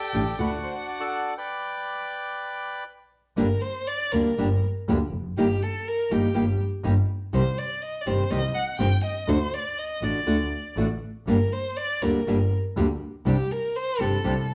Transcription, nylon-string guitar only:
0.14 D3 A3 D4 G4
0.39 D3 A3 D4 F#4
3.37 D3 G3 A#3 D4 G4
4.13 D3 G3 A#3 D4 G4
4.38 D3 G3 A#3 D4 G4
4.88 D3 G3 A#3 D4 G4
5.37 D#3 G3 A#3 D#4 G4
6.11 D#3 G3 A#3 D#4 G4
6.34 D#3 G3 A#3 D#4 G4
6.84 D#3 G3 A#3 D#4 G4
7.33 C3 D#3 G3 C4 G4
8.06 C3 D#3 G3 C4 G4
8.30 C3 D#3 G3 C4 G4
8.79 C3 D#3 G3 C4 G4
9.28 D3 A3 D4 F#4
10.01 D3 A3 D4 F#4
10.26 D3 A3 D4 F#4
10.77 D3 A3 D4 F#4
11.27 D3 G3 A#3 D4 G4
12.02 D3 G3 A#3 D4 G4
12.27 D3 G3 A#3 D4 G4
12.77 D3 G3 A#3 D4 G4
13.26 C3 G3 C4 D4 G4
14.00 C3 G3 C4 D4 G4
14.24 C3 G3 C4 D4 G4

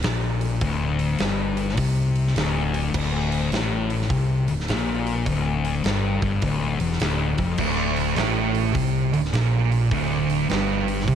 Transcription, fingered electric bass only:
0.04 A#1
0.61 D1
1.20 G1
1.78 C2
2.36 D1
2.94 D1
3.52 A1
4.10 C2
4.49 D1
4.69 A#1
5.26 D1
5.85 G1
6.22 G1
6.42 D1
6.81 E1
7.01 D1
7.38 F1
7.58 D1
8.17 A1
8.75 C2
9.13 D1
9.33 A#1
9.91 D1
10.51 G1
11.08 C2

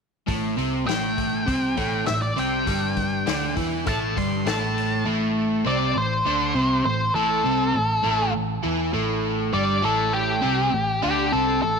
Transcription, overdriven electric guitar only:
0.27 A2 A3
0.57 C3 C4
0.86 A2 A3
1.46 C3 C4
1.77 A2 A3
2.07 A2
2.37 C3 C4
2.66 G2 G3
3.26 D3 D4
3.56 E3 E4
3.86 A2 A3
4.16 G2 G3
4.46 A2 A3
5.06 A2 A3
5.65 C3 C4
5.96 A2
6.25 D3 D4
6.55 C3 C4
6.85 A2
7.16 A2 A3
7.45 C3 C4
7.75 A2
8.03 A2 A3
8.33 A2
8.63 E3 E4
8.93 A2 A3
9.53 G2 G3
9.82 A2 A3
10.42 C3 C4
10.72 A2
11.02 D3 D4
11.33 C3 C4
11.64 A2

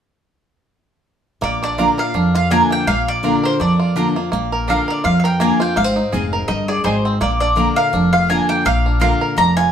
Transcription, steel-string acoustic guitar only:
1.41 A#2
1.78 D3 A#3 D4 F4
1.97 D4 F4
2.14 F2
2.50 D3 A#3 D4 F4
2.87 A#2
3.23 D3 A#3 D4 F4
3.60 F2
3.96 D3 A#3 D4 F4
4.16 D4 F4
4.33 A#2
4.68 D3 A#3 D4 F4
5.04 F2
5.40 D3 A#3 D4 F4
5.60 D4 F4
5.76 G#2
6.13 G#3 C4 D#4 G#4
6.48 G2
6.84 G#2
7.21 A#2
7.56 D3 A#3 D4 F4
7.93 F2
8.30 D3 A#3 D4 F4
8.65 A#2
9.00 D3 A#3 D4 F4
9.37 F2

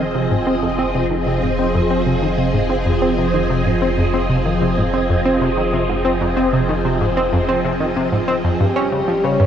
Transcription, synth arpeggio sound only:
0.15 C3
0.31 G#2
0.47 C4
0.63 F2
0.79 C4
0.95 C3
1.10 D#3
1.26 C3
1.42 G#2
1.58 C4
1.74 F2
1.90 C4
2.06 C3
2.22 D#3
2.38 C3
2.54 G#2
2.70 C4
2.86 F2
3.02 C4
3.18 C3
3.34 D#3
3.50 C3
3.66 G#2
3.82 C4
3.98 F2
4.14 C4
4.30 C3
4.46 D#3
4.62 C3
4.78 G#2
4.94 C4
5.10 F2
5.26 C4
5.42 C3
5.58 D#3
5.73 C3
5.89 G#2
6.05 C4
6.21 F2
6.37 C4
6.53 C3
6.69 D#3
6.85 C3
7.01 G#2
7.17 C4
7.33 F2
7.49 C4
7.64 C3
7.80 D#3
7.96 C3
8.12 G#2
8.28 C4
8.44 F2
8.60 G2
8.76 C#4
8.92 C#3
9.08 F3
9.24 C#3
9.40 G2

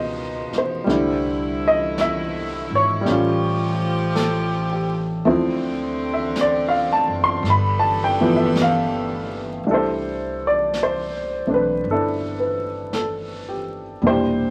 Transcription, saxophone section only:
Already playing: B2 D#3 F3
0.88 D3 A3 E4
3.05 F3 G4
5.26 D3 C4
7.44 G3 B3 D4 A4

